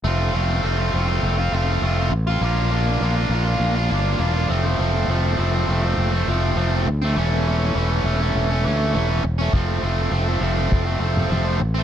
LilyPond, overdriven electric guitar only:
\new Staff \with { instrumentName = "Overdriven electric guitar" } { \time 4/4 \key f \major \tempo 4 = 101 <a c' f'>8 <a c' f'>8 <a c' f'>16 <c' f'>16 <a c' f'>16 <c' f'>8 <c' f'>16 <a c' f'>8 <a c' f'>16 <c' f'>8 <c' f'>16 | <bes d' f'>8 <bes d' f'>8 <bes d' f'>16 <d' f'>16 <bes d' f'>16 <d' f'>8 <d' f'>16 <bes d' f'>8 <bes d' f'>16 <d' f'>16 <f a c'>16 <a c'>16 | <f a c'>8 <f a c'>8 <f a c'>16 <a c'>16 <f a c'>16 <a c'>8 <a c'>16 <f a c'>8 <f a c'>16 <a c'>8 <a c'>16 | <e a cis'>8 <e a cis'>8 <e a cis'>16 <a cis'>16 <e a cis'>16 <a cis'>8 <a cis'>16 <e a cis'>8 <e a cis'>16 <a cis'>8 <a cis'>16 |
<f a c'>8 <f a c'>8 <f a c'>16 <a c'>16 <f a c'>16 <a c'>8 <a c'>16 <f a c'>8 <f a c'>16 <a c'>8 <a c'>16 | }